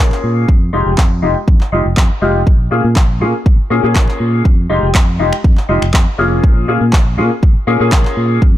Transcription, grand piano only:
Already playing: A#3 C#4 F4 G#4
0.73 G#3 D#4 F4 G4
1.22 G#3 D#4 F4 G4
1.72 G#3 D#4 F4 G4
2.22 G#3 D#4 F4 G4
2.71 A#3 C#4 F4 G#4
3.21 A#3 C#4 F4 G#4
3.70 A#3 C#4 F4 G#4
3.83 A#3 C#4 F4 G#4
4.70 G#3 D#4 F4 G4
5.19 G#3 D#4 F4 G4
5.69 G#3 D#4 F4 G4
6.18 A#3 C#4 F4 G#4
6.68 A#3 C#4 F4 G#4
7.17 A#3 C#4 F4 G#4
7.67 A#3 C#4 F4 G#4
7.80 A#3 C#4 F4 G#4

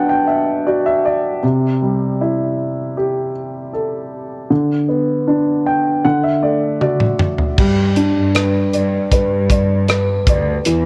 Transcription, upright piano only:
Already playing: B2 F#3 B3 D4 F#5 G5 A5
0.09 G5
0.27 E5
0.66 F#4 D5
0.86 E5
1.05 D5
1.43 C3
1.82 G3
2.21 E4
2.97 G4
3.74 A4
4.50 D3
4.89 B3
5.28 D4
5.66 G5
6.05 D3 F#5
6.24 E5
6.43 A3 D5
6.81 F#4 D5
7.58 G3
7.96 D4
8.35 B4
8.74 D5
9.13 B4
9.51 D5
9.89 B4
10.29 D5
10.66 E3

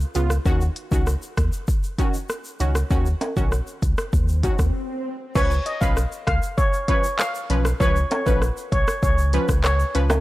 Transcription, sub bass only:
0.15 C#2
0.45 D#2
0.92 C#2
1.37 D#2
2.60 C#2
2.91 D#2
3.37 B1
3.82 C#2
4.13 D#2
4.59 D#2
5.36 C#2
5.82 B1
6.27 C#2
7.50 B1
7.80 C#2
8.27 A#1
8.72 B1
9.03 C#2
9.49 C#2
9.95 C#2

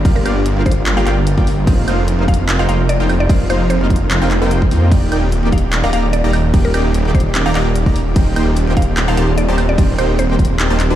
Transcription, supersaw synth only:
0.05 A#3 F4 G4 D5 F5
0.25 A#3 F4 G4 D5 F5
0.57 A#3 F4 G4 D5 F5
0.97 A#3 F4 G4 D5 G5
1.06 A#3 F4 G4 D5 G5
1.38 A#3 F4 G4 D5 G5
1.67 A#3 D#4 F4 C5 F5
1.88 A#3 D#4 F4 C5 F5
2.19 A#3 D#4 F4 C5 F5
2.59 A#3 D#4 F4 C5 G5
2.69 A#3 D#4 F4 C5 G5
3.00 A#3 D#4 F4 C5 G5
3.30 A#3 D#4 F4 C5 F5
3.50 A#3 D#4 F4 C5 F5
3.81 A#3 D#4 F4 C5 F5
4.22 A#3 D#4 F4 C5 G5
4.42 A#3 D#4 F4 C5 G5
4.71 A#3 D#4 F4 C5 G5
4.92 D#4 G4 D5 G5
5.12 A#3 D#4 G4 D5 G5
5.43 A#3 D#4 G4 D5 G5
5.84 A#3 D#4 G4 D5 A#5
5.93 A#3 D#4 G4 D5 A#5
6.24 A#3 D#4 G4 D5 A#5
6.54 A#3 D#4 G4 D5 G5
6.74 A#3 D#4 G4 D5 G5
7.05 A#3 D#4 G4 D5 G5
7.46 A#3 D#4 G4 D5 A#5
7.55 A#3 D#4 G4 D5 A#5
7.86 A#3 D#4 G4 D5 A#5
8.16 A#3 D#4 G4 C5 G5
8.36 A#3 D#4 G4 C5 G5
8.67 A#3 D#4 G4 C5 G5
9.08 A#3 D#4 G4 C5 A5
9.17 A#3 D#4 G4 C5 A5
9.48 A#3 D#4 G4 C5 A5
9.78 A#3 D#4 G4 C5 G5
9.98 A#3 D#4 G4 C5 G5
10.30 A#3 D#4 G4 C5 G5
10.70 A#3 D#4 G4 C5 A5
10.90 A#3 D#4 G4 C5 A5

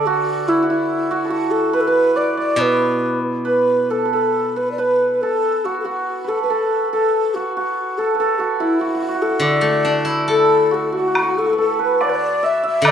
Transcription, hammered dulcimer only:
Already playing: A4 B4 D5 E5
0.07 F#4
0.48 E4
0.62 F#4
0.70 E4
1.11 F#4
1.24 A4
1.30 F#4
1.73 B4
1.87 B4
2.16 D5
2.37 D5
2.59 B4
3.45 B4
3.90 A4
4.05 B4
4.13 A4
4.56 B4
4.78 B4
5.23 A4
5.65 F#4
5.85 F#4
6.24 B4
6.28 A4
6.44 B4
6.50 A4
6.93 A4
7.36 F#4
7.57 F#4
7.99 A4
8.15 B4
8.20 A4
8.40 F#4
8.60 E4
8.81 F#4
8.87 F#4
8.95 F#4
9.02 F#4
9.09 F#4
9.14 F#4
9.23 F#4
9.30 F#4
9.42 D5
10.28 A4
10.71 F#4
10.92 F#4
10.99 F#4
11.08 F#4
11.14 F#4
11.22 F#4
11.31 F#4
11.38 F#4
11.45 F#4
11.53 B4
11.58 A4
11.79 B4
12.01 D5
12.43 E5
12.63 E5
12.84 D5

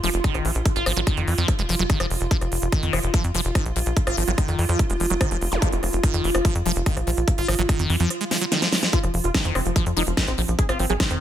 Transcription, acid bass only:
0.03 F3
0.24 D#3
0.45 F3
0.76 F4
0.86 F3
0.97 F#3
1.07 D#3
1.28 F3
1.38 F3
1.59 G#3
1.69 F3
1.79 F#3
1.90 D#3
2.00 F3
2.31 F3
2.72 D#3
2.93 F3
3.14 F3
3.34 F3
3.55 D#3
3.76 F3
4.07 F4
4.17 F3
4.28 F#3
4.38 D#3
4.59 F3
4.69 F3
4.90 G#3
5.00 F3
5.10 F#3
5.21 D#3
5.31 F3
5.62 F3
6.04 D#3
6.24 F3
6.45 F3
6.66 F3
6.86 D#3
7.07 F3
7.38 F4
7.48 F3
7.59 F#3
7.69 D#3
7.90 F3
8.00 F3
8.21 G#3
8.31 F3
8.41 F#3
8.52 D#3
8.62 F3
8.93 F3
9.34 D#3
9.55 F3
9.76 F3
9.97 F3
10.17 D#3
10.38 F3
10.69 F4
10.79 F3
10.90 F#3
11.00 D#3

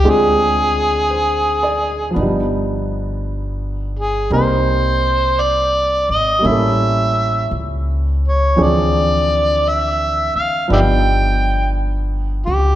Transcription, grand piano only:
0.04 G#3 C4 D4 F4 G#4
1.10 C5
1.63 D5
2.11 F3 B3
2.16 D4 D#4
2.22 G3
4.31 G3 A#3 C4 D#4 A#4
6.39 G3 A#3
6.44 C#4 E4
6.50 A4
8.56 E3 F3 C4 D4 G#4
10.68 F3 B3 D4 D#4
10.72 G4

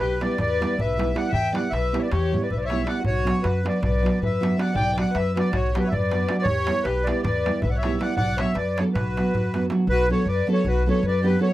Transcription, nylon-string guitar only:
0.21 G3 B3 E4 G4
0.61 G3 B3 E4 G4
0.97 G3 B3 E4 G4
1.14 G3 B3 E4 G4
1.53 G3 B3 E4 G4
1.92 G3 B3 E4 G4
2.32 G3 B3 E4 G4
2.71 G3 B3 E4 G4
2.87 G3 B3 E4 G4
3.24 F#3 B3 D4 F#4
3.63 F#3 B3 D4 F#4
4.02 F#3 B3 D4 F#4
4.40 F#3 B3 D4 F#4
4.57 F#3 B3 D4 F#4
4.97 F#3 B3 D4 F#4
5.35 F#3 B3 D4 F#4
5.75 F#3 B3 D4 F#4
6.12 F#3 B3 D4 F#4
6.29 F#3 B3 D4 F#4
6.67 G3 B3 E4 G4
7.06 G3 B3 E4 G4
7.46 G3 B3 E4 G4
7.84 G3 B3 E4 G4
7.99 G3 B3 E4 G4
8.38 F#3 B3 D4 F#4
8.78 F#3 B3 D4 F#4
9.17 F#3 B3 D4 F#4
9.54 F#3 B3 D4 F#4
9.70 F#3 B3 D4 F#4
10.09 F#3 B3 D4 F#4 B4
10.47 F#3 B3 D4 F#4 B4
10.86 F#3 B3 D4 F#4 B4
11.23 F#3 B3 D4 F#4 B4
11.39 F#3 B3 D4 F#4 B4

